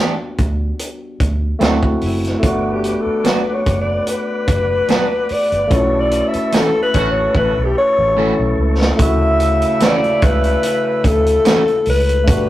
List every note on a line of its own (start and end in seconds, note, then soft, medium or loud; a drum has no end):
0.00 0.12 E3 medium
0.00 1.55 G3 medium
0.00 0.13 B3 medium
0.00 1.56 B3 medium
0.00 0.13 D4 medium
0.00 1.57 D4 medium
0.00 1.59 F#4 medium
0.00 0.13 G4 medium
0.38 0.70 D2 medium
0.38 kick medium
0.38 closed hi-hat medium
0.79 closed hi-hat medium
1.20 1.52 D2 medium
1.20 kick medium
1.20 closed hi-hat medium
1.59 1.93 D2 medium
1.59 1.76 F#3 medium
1.59 2.38 A3 medium
1.59 2.43 C4 medium
1.59 1.77 C4 medium
1.59 1.77 D4 medium
1.59 2.43 E4 medium
1.59 1.77 F#4 medium
1.59 2.44 F#4 medium
1.59 snare loud
1.59 closed hi-hat medium
1.83 kick loud
2.01 2.34 F#1 medium
2.01 open hi-hat medium
2.06 2.48 E4 medium
2.25 snare soft
2.25 closed hi-hat medium
2.39 2.92 G1 medium
2.39 5.65 A3 medium
2.39 5.66 B3 medium
2.39 8.95 B4 medium
2.39 5.67 D5 medium
2.39 5.67 F#5 medium
2.39 5.67 D6 medium
2.39 kick loud
2.39 closed hi-hat medium
2.44 5.67 D4 medium
2.44 5.68 F#4 medium
2.44 2.74 F#4 medium
2.73 3.02 G4 medium
2.84 closed hi-hat medium
3.00 3.28 A4 medium
3.06 muted fingered electric bass stroke soft
3.24 3.40 F#3 medium
3.24 3.41 B3 medium
3.24 3.41 D4 medium
3.24 3.41 F#4 medium
3.24 3.55 B4 medium
3.24 snare loud
3.24 closed hi-hat medium
3.54 3.80 C#5 loud
3.66 3.98 F#1 medium
3.66 kick medium
3.66 closed hi-hat medium
3.81 4.06 D5 medium
4.07 5.34 B4 loud
4.07 closed hi-hat medium
4.47 4.80 F#1 medium
4.47 kick medium
4.47 closed hi-hat medium
4.88 5.04 F#3 medium
4.88 5.05 B3 medium
4.88 5.05 D4 medium
4.88 5.05 F#4 medium
4.88 snare loud
4.88 closed hi-hat medium
5.29 5.75 D5 loud
5.29 muted fingered electric bass stroke soft
5.29 open hi-hat medium
5.52 5.71 G1 medium
5.52 closed hi-hat medium
5.68 6.20 B1 loud
5.68 8.11 A3 medium
5.68 8.12 C#4 medium
5.68 8.95 E5 medium
5.68 8.95 A5 medium
5.68 8.95 C#6 medium
5.68 kick loud
5.68 closed hi-hat medium
5.72 8.13 E4 medium
5.72 5.80 F4 medium
5.72 6.02 C#5 loud
5.81 8.18 F#4 medium
6.00 6.30 D5 medium
6.11 closed hi-hat medium
6.28 6.57 E5 loud
6.33 muted fingered electric bass stroke soft
6.33 closed hi-hat medium
6.52 6.68 E3 medium
6.52 6.68 A3 medium
6.52 6.69 C#4 medium
6.52 6.69 F#4 medium
6.52 6.81 A4 loud
6.52 snare loud
6.52 closed hi-hat loud
6.83 7.12 B4 loud
6.94 7.26 A1 medium
6.94 7.54 A3 medium
6.94 7.54 C#4 medium
6.94 7.54 F#4 loud
6.94 kick medium
6.94 closed hi-hat medium
7.11 7.36 C#5 loud
7.35 7.52 A1 medium
7.35 7.66 B4 loud
7.35 kick medium
7.57 7.72 B1 medium
7.64 7.77 G4 medium
7.78 8.55 C#5 loud
7.98 8.30 A1 medium
8.15 8.32 E3 medium
8.15 8.95 A3 medium
8.15 8.33 A3 medium
8.15 8.98 C#4 soft
8.15 8.33 C#4 medium
8.15 8.99 E4 medium
8.15 8.33 F#4 medium
8.15 9.00 A4 medium
8.39 8.54 B1 medium
8.58 8.90 C#2 medium
8.82 snare medium
8.96 9.63 D2 loud
8.96 12.23 C#3 medium
8.96 11.83 C#3 medium
8.96 12.22 A3 medium
8.96 11.82 A3 medium
8.96 11.83 E4 medium
8.96 kick loud
8.96 closed hi-hat medium
9.00 12.24 E4 medium
9.00 12.25 F#4 medium
9.00 9.86 E5 loud
9.40 closed hi-hat medium
9.62 closed hi-hat medium
9.80 9.96 E3 medium
9.80 9.97 A3 medium
9.80 9.97 C#4 medium
9.80 9.97 F#4 medium
9.80 10.26 D5 loud
9.80 snare loud
9.80 closed hi-hat loud
10.04 closed hi-hat soft
10.22 10.54 C#2 medium
10.22 11.08 B4 loud
10.22 kick loud
10.22 closed hi-hat medium
10.44 closed hi-hat soft
10.63 closed hi-hat medium
11.04 11.36 D2 medium
11.04 11.88 A4 loud
11.04 kick medium
11.04 closed hi-hat medium
11.26 closed hi-hat medium
11.45 11.61 E3 medium
11.45 11.61 A3 medium
11.45 11.61 C#4 medium
11.45 11.61 F#4 loud
11.45 snare loud
11.45 closed hi-hat medium
11.68 closed hi-hat soft
11.85 12.29 C#2 medium
11.85 open hi-hat medium
11.90 12.49 B4 loud
12.09 closed hi-hat medium
12.24 12.49 G1 loud
12.24 12.49 B2 medium
12.24 12.49 A3 medium
12.24 12.49 B3 medium
12.24 12.49 D4 medium
12.24 12.49 G4 medium
12.24 kick loud
12.24 closed hi-hat medium
12.28 12.49 D4 medium
12.28 12.49 F#4 medium